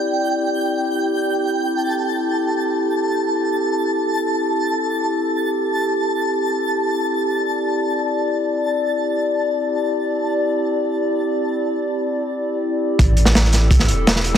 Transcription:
0.00 12.95 C4 medium
0.00 12.95 E4 medium
0.00 12.95 G4 medium
0.00 1.47 D5 medium
0.00 1.51 G5 medium
1.49 7.22 A4 medium
1.49 11.56 A5 medium
7.24 12.97 D5 medium
12.99 13.91 A1 loud
12.99 14.38 C4 medium
12.99 14.38 E4 medium
12.99 14.38 G4 medium
12.99 14.38 A4 medium
12.99 kick loud
12.99 closed hi-hat medium
13.17 closed hi-hat medium
13.25 snare medium
13.35 snare loud
13.35 closed hi-hat medium
13.44 snare soft
13.53 snare soft
13.53 closed hi-hat medium
13.71 kick loud
13.71 closed hi-hat medium
13.79 snare soft
13.88 14.38 E1 loud
13.88 closed hi-hat medium
14.07 snare loud
14.07 closed hi-hat medium
14.16 snare medium
14.24 closed hi-hat medium
14.34 snare medium

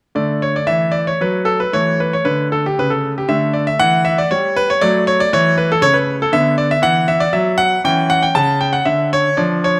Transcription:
0.15 0.58 D3 medium
0.15 1.69 A3 soft
0.15 0.42 D5 medium
0.42 0.55 C#5 medium
0.56 0.68 D5 medium
0.67 1.09 E3 medium
0.67 0.93 E5 medium
0.92 1.06 D5 medium
1.07 1.20 C#5 medium
1.21 1.62 F#3 medium
1.21 1.47 B4 medium
1.45 1.59 A4 medium
1.60 1.73 B4 medium
1.73 2.14 E3 medium
1.73 3.23 A3 soft
1.73 1.99 C#5 medium
2.00 2.12 B4 medium
2.13 2.25 C#5 medium
2.25 2.66 D3 medium
2.25 2.46 B4 medium
2.52 2.64 A4 medium
2.66 2.77 G4 medium
2.79 3.19 C#3 soft
2.79 2.90 B4 medium
2.90 3.11 A4 medium
3.18 3.29 G4 medium
3.29 3.69 D3 medium
3.29 4.77 A3 soft
3.29 3.54 E5 medium
3.53 3.66 D5 medium
3.67 3.79 E5 medium
3.79 4.20 E3 medium
3.79 4.05 F#5 loud
4.05 4.17 E5 medium
4.18 4.30 D5 medium
4.31 4.71 G3 medium
4.31 4.55 C#5 medium
4.56 4.68 B4 loud
4.70 4.81 C#5 medium
4.81 5.22 F#3 medium
4.81 6.29 A3 soft
4.81 5.03 D5 loud
5.07 5.19 C#5 medium
5.20 5.32 D5 loud
5.33 5.73 E3 medium
5.33 5.54 C#5 loud
5.58 5.70 B4 medium
5.72 5.83 A4 medium
5.81 6.22 C#3 medium
5.81 5.94 C#5 loud
5.94 6.15 B4 medium
6.22 6.33 A4 medium
6.32 6.73 D3 medium
6.32 7.81 B3 soft
6.32 6.54 E5 loud
6.58 6.70 D5 medium
6.71 6.83 E5 medium
6.82 7.23 E3 medium
6.82 7.08 F#5 loud
7.08 7.21 E5 medium
7.20 7.33 D5 loud
7.33 7.74 F#3 medium
7.33 7.59 E5 medium
7.58 7.80 F#5 loud
7.84 8.26 E3 medium
7.84 9.35 C#4 soft
7.84 8.11 G5 loud
8.10 8.23 F#5 loud
8.23 8.36 G5 medium
8.35 8.77 C#3 medium
8.35 8.57 A5 loud
8.61 8.74 G5 medium
8.73 8.87 F#5 medium
8.85 9.28 D3 medium
8.85 9.08 E5 medium
9.13 9.39 C#5 medium
9.37 9.80 F3 medium
9.37 9.80 D4 soft
9.37 9.64 D5 medium
9.64 9.78 C#5 medium

